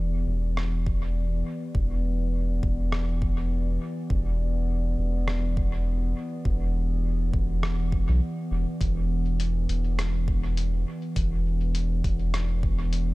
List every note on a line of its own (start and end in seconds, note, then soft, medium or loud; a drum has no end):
0.00 0.25 E1 medium
0.00 13.14 E3 medium
0.00 13.14 B3 medium
0.00 13.14 G4 medium
0.00 13.14 D5 medium
0.27 1.43 E1 medium
0.57 cross-stick medium
0.86 kick loud
1.75 2.60 E1 medium
1.75 kick loud
2.63 3.78 E1 medium
2.63 kick loud
2.92 cross-stick medium
3.22 kick loud
4.10 4.96 E1 loud
4.10 kick loud
4.99 6.14 E1 medium
5.28 cross-stick medium
5.57 kick loud
6.45 7.31 E1 loud
6.45 kick loud
7.33 8.08 E1 medium
7.33 kick loud
7.63 cross-stick medium
7.92 kick loud
8.09 8.20 B1 medium
8.51 8.66 E1 medium
8.81 9.66 E1 loud
8.81 kick loud
8.81 closed hi-hat soft
9.40 closed hi-hat soft
9.69 10.84 E1 medium
9.69 closed hi-hat soft
9.99 cross-stick medium
9.99 closed hi-hat soft
10.28 kick loud
10.57 closed hi-hat soft
11.16 12.02 E1 loud
11.16 kick loud
11.16 closed hi-hat soft
11.75 closed hi-hat soft
12.04 13.14 E1 medium
12.04 kick loud
12.04 closed hi-hat soft
12.34 cross-stick medium
12.34 closed hi-hat soft
12.63 kick loud
12.93 closed hi-hat soft